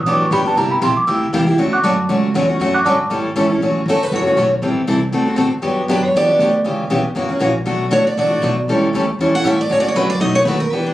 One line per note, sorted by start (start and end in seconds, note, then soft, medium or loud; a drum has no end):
0.06 0.30 A1 medium
0.06 0.24 D3 medium
0.06 0.24 F#3 medium
0.06 0.24 B3 medium
0.06 0.25 D4 medium
0.06 0.25 G4 medium
0.06 0.21 D6 medium
0.22 0.32 C#6 medium
0.31 0.55 G1 loud
0.31 0.42 D3 medium
0.31 0.42 F#3 loud
0.31 0.42 B3 loud
0.31 0.42 D4 loud
0.31 0.42 G4 loud
0.31 0.46 B5 medium
0.46 0.57 B3 medium
0.46 0.57 D4 medium
0.46 0.56 G4 medium
0.46 0.57 A5 loud
0.56 0.81 C2 medium
0.56 0.75 C3 medium
0.56 0.75 G3 medium
0.56 0.75 A#3 medium
0.56 0.75 E4 medium
0.56 0.75 G4 medium
0.56 0.71 A#5 medium
0.71 0.82 B5 medium
0.81 0.95 A#1 loud
0.81 0.92 C3 medium
0.81 0.92 G3 medium
0.81 0.92 A#3 loud
0.81 0.92 E4 loud
0.81 0.93 G4 loud
0.81 0.96 C6 medium
0.96 1.08 D6 loud
0.96 muted upright bass stroke soft
1.07 1.32 D2 medium
1.07 1.25 C3 medium
1.07 1.26 G3 medium
1.07 1.26 A#3 medium
1.07 1.26 E4 medium
1.07 1.26 G4 medium
1.07 1.31 E6 medium
1.33 1.57 E2 loud
1.33 1.43 C3 loud
1.33 1.43 G3 loud
1.33 1.43 A#3 medium
1.33 1.43 E4 loud
1.33 1.44 G4 loud
1.47 1.58 A#3 medium
1.47 1.58 E4 medium
1.47 1.58 G4 medium
1.58 1.83 D2 medium
1.58 1.76 D3 medium
1.58 1.76 F#3 medium
1.58 1.76 A3 medium
1.58 1.76 C#4 medium
1.58 1.77 F#4 medium
1.73 1.82 F#5 medium
1.73 1.84 C#6 medium
1.73 1.81 D6 medium
1.73 1.84 F#6 loud
1.82 2.08 F#2 medium
1.82 1.94 D3 loud
1.82 1.94 F#3 loud
1.82 1.94 A3 loud
1.82 1.94 C#4 medium
1.82 1.94 F#4 loud
1.82 2.07 D5 medium
1.82 2.07 F#5 medium
1.82 2.07 A5 medium
1.82 2.07 D6 medium
2.09 2.34 C#2 loud
2.09 2.27 D3 medium
2.09 2.27 F#3 medium
2.09 2.27 A3 medium
2.09 2.27 C#4 medium
2.09 2.28 F#4 medium
2.34 2.59 E2 loud
2.34 2.45 D3 loud
2.34 2.45 F#3 medium
2.34 2.45 A3 loud
2.34 2.45 C#4 loud
2.34 2.45 F#4 loud
2.49 2.60 A3 medium
2.49 2.60 C#4 medium
2.49 2.60 F#4 medium
2.60 2.84 F#2 medium
2.60 2.78 D3 medium
2.60 2.78 F#3 medium
2.60 2.78 A3 medium
2.60 2.78 C#4 medium
2.60 2.78 F#4 medium
2.74 2.85 F#5 medium
2.74 2.86 C#6 medium
2.74 2.84 D6 medium
2.74 2.85 F#6 loud
2.85 2.98 G2 loud
2.85 2.95 D3 loud
2.85 2.96 F#3 medium
2.85 2.96 A3 loud
2.85 2.96 C#4 loud
2.85 2.96 F#4 loud
2.85 3.09 D5 medium
2.85 3.09 F#5 medium
2.85 3.09 A5 medium
2.85 3.09 D6 loud
3.00 muted upright bass stroke soft
3.10 3.35 A2 medium
3.10 3.28 E3 medium
3.10 3.28 G3 medium
3.10 3.29 C#4 medium
3.10 3.29 E4 medium
3.10 3.29 A4 medium
3.36 3.60 C#2 loud
3.36 3.46 E3 loud
3.36 3.46 G3 loud
3.36 3.46 C#4 loud
3.36 3.46 E4 loud
3.36 3.46 A4 loud
3.50 3.62 C#4 medium
3.50 3.61 E4 medium
3.50 3.61 A4 medium
3.61 3.85 A1 medium
3.61 3.80 D3 medium
3.61 3.80 F#3 medium
3.61 3.80 A3 medium
3.61 3.80 C#4 medium
3.61 3.80 F#4 medium
3.86 4.11 G1 medium
3.86 3.97 D3 medium
3.86 3.98 F#3 medium
3.86 3.98 A3 loud
3.86 3.98 C#4 loud
3.86 3.98 F#4 loud
3.90 4.03 A4 medium
4.03 4.13 B4 medium
4.12 4.36 F#1 medium
4.12 4.26 D3 medium
4.12 4.26 F#3 medium
4.12 4.26 A3 medium
4.12 4.26 C#4 medium
4.12 4.25 F#4 medium
4.16 4.51 C#5 medium
4.26 4.37 A3 soft
4.26 4.37 C#4 medium
4.26 4.37 F#4 medium
4.36 4.61 B1 loud
4.36 4.47 D3 loud
4.36 4.47 F#3 medium
4.36 4.48 A3 loud
4.36 4.48 C#4 loud
4.36 4.48 F#4 medium
4.62 4.75 A1 medium
4.62 4.81 E3 medium
4.62 4.81 G3 medium
4.62 4.81 C4 medium
4.62 4.81 E4 medium
4.62 4.81 A4 medium
4.76 muted upright bass stroke soft
4.87 5.12 C2 loud
4.87 4.98 E3 medium
4.87 4.98 G3 medium
4.87 4.98 C4 medium
4.87 4.98 E4 loud
4.87 4.98 A4 loud
5.12 5.37 D2 medium
5.12 5.27 D3 medium
5.12 5.27 A3 medium
5.12 5.27 C4 medium
5.12 5.26 F#4 medium
5.12 5.24 A4 medium
5.26 5.36 C4 medium
5.26 5.36 F#4 medium
5.26 5.37 A4 medium
5.36 5.51 A2 loud
5.36 5.48 D3 medium
5.36 5.48 A3 medium
5.36 5.48 C4 loud
5.36 5.48 F#4 medium
5.36 5.49 A4 loud
5.52 muted upright bass stroke soft
5.62 5.88 G2 medium
5.62 5.81 D3 medium
5.62 5.81 F#3 medium
5.62 5.81 B3 medium
5.62 5.82 D4 medium
5.62 5.82 G4 medium
5.88 6.14 F#2 loud
5.88 5.99 D3 loud
5.88 6.00 F#3 loud
5.88 6.00 B3 loud
5.88 6.00 D4 medium
5.88 6.00 G4 loud
5.88 6.05 B4 medium
6.05 6.15 C#5 loud
6.14 6.39 E2 medium
6.14 6.29 D3 medium
6.14 6.29 F#3 medium
6.14 6.29 B3 medium
6.14 6.29 D4 medium
6.14 6.28 G4 medium
6.14 6.53 D5 loud
6.29 6.39 B3 medium
6.29 6.40 D4 medium
6.29 6.40 G4 medium
6.39 6.65 D2 loud
6.39 6.51 D3 loud
6.39 6.51 F#3 medium
6.39 6.50 B3 medium
6.39 6.51 D4 loud
6.39 6.51 G4 loud
6.64 6.90 C#2 medium
6.64 6.83 C#3 medium
6.64 6.84 E3 medium
6.64 6.83 B3 medium
6.64 6.84 C#4 medium
6.64 6.84 G4 medium
6.90 7.03 B1 loud
6.90 7.01 C#3 medium
6.90 7.01 E3 medium
6.90 7.01 B3 medium
6.90 7.01 C#4 medium
6.90 7.01 G4 medium
7.04 muted upright bass stroke soft
7.15 7.29 F#1 medium
7.15 7.29 C#3 medium
7.15 7.30 E3 medium
7.15 7.30 A#3 medium
7.15 7.29 C#4 medium
7.15 7.28 F#4 medium
7.29 7.39 A#3 medium
7.29 7.40 C#4 medium
7.29 7.40 F#4 medium
7.29 muted upright bass stroke soft
7.39 7.66 A#1 loud
7.39 7.51 C#3 medium
7.39 7.51 E3 medium
7.39 7.51 A#3 loud
7.39 7.52 C#4 loud
7.39 7.52 F#4 medium
7.65 7.91 B1 medium
7.65 7.84 B2 medium
7.65 7.85 F#3 medium
7.65 7.85 A3 medium
7.65 7.85 D4 medium
7.65 7.85 F#4 medium
7.91 8.16 D2 loud
7.91 8.02 B2 loud
7.91 8.02 F#3 loud
7.91 8.02 A3 loud
7.91 8.02 D4 loud
7.91 8.02 F#4 loud
7.91 8.06 C#5 medium
8.07 8.18 D5 medium
8.17 8.42 A1 medium
8.17 8.31 B2 medium
8.17 8.31 F#3 medium
8.17 8.31 A3 medium
8.17 8.30 D4 medium
8.17 8.29 F#4 medium
8.17 8.55 D5 medium
8.30 8.42 A3 medium
8.30 8.42 D4 medium
8.30 8.42 F#4 medium
8.42 8.67 B1 loud
8.42 8.53 B2 loud
8.42 8.53 F#3 medium
8.42 8.53 A3 loud
8.42 8.53 D4 medium
8.42 8.54 F#4 loud
8.68 8.93 C#2 medium
8.68 8.87 E3 medium
8.68 8.87 G3 medium
8.68 8.87 C#4 medium
8.68 8.87 E4 medium
8.68 8.87 A4 medium
8.93 9.18 D2 loud
8.93 9.05 E3 medium
8.93 9.05 G3 loud
8.93 9.05 C#4 loud
8.93 9.05 E4 medium
8.93 9.05 A4 loud
9.19 9.32 E2 medium
9.19 9.34 E3 medium
9.19 9.34 G3 medium
9.19 9.34 C#4 medium
9.19 9.34 E4 medium
9.19 9.33 A4 medium
9.33 9.45 C#4 medium
9.33 9.44 E4 medium
9.33 9.45 A4 medium
9.33 9.46 F#5 loud
9.33 muted upright bass stroke soft
9.44 9.69 A2 medium
9.44 9.55 E3 medium
9.44 9.55 G3 loud
9.44 9.56 C#4 loud
9.44 9.55 E4 loud
9.44 9.56 A4 loud
9.44 9.60 E5 medium
9.61 9.72 D5 loud
9.69 9.94 D2 medium
9.69 9.88 D3 medium
9.69 9.88 F#3 medium
9.69 9.88 A3 medium
9.69 9.89 C#4 medium
9.69 9.89 F#4 medium
9.69 9.80 C#5 loud
9.80 9.88 D5 loud
9.88 9.96 C#5 medium
9.95 10.20 F#2 loud
9.95 10.06 D3 loud
9.95 10.06 F#3 loud
9.95 10.06 A3 loud
9.95 10.06 C#4 loud
9.95 10.07 F#4 loud
9.95 10.10 B4 loud
10.10 10.21 D5 loud
10.20 10.45 B1 medium
10.20 10.34 B2 medium
10.20 10.34 F#3 medium
10.20 10.34 A3 medium
10.20 10.35 D#4 medium
10.20 10.33 F#4 medium
10.20 10.35 D#5 loud
10.35 10.47 A3 medium
10.35 10.47 D#4 medium
10.35 10.46 F#4 medium
10.35 10.45 C#5 loud
10.45 10.71 D#2 loud
10.45 10.57 B2 medium
10.45 10.57 F#3 loud
10.45 10.57 A3 loud
10.45 10.57 D#4 medium
10.45 10.58 F#4 loud
10.45 10.60 B4 medium
10.60 10.71 A#4 medium
10.71 10.94 E2 medium
10.71 10.90 E3 medium
10.71 10.90 B3 medium
10.71 10.91 D4 medium
10.71 10.91 G4 medium
10.71 10.85 B4 loud
10.86 10.94 D4 medium